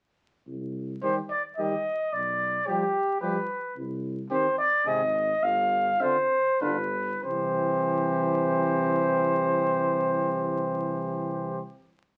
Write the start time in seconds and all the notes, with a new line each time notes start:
0.47 C2
1.02 D#3 G3 G4 C5
1.30 D5
1.57 D#3 G3 G4 D#5
2.13 B1 D5
2.67 F3 G3 G4
3.21 F3 G3 G4 B4
3.76 C2
4.30 D#3 C4 G4 C5
4.58 D5
4.85 G#1 C3 C4 G#4 D#5
5.43 G1 F5
6.00 D3 C4 F4 C5
6.61 G1 D3 D4 F4 B4
7.23 C2 E3 C4 G4 C5